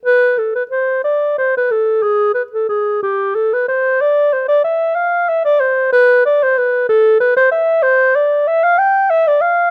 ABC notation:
X:1
M:6/8
L:1/16
Q:3/8=62
K:C
V:1 name="Clarinet"
B2 A B c2 d2 c B A2 | ^G2 B A G2 =G2 A B c2 | d2 c d e2 f2 e d c2 | B2 d c B2 A2 B c e2 |
[K:Dm] c2 d2 e f g2 e d f2 |]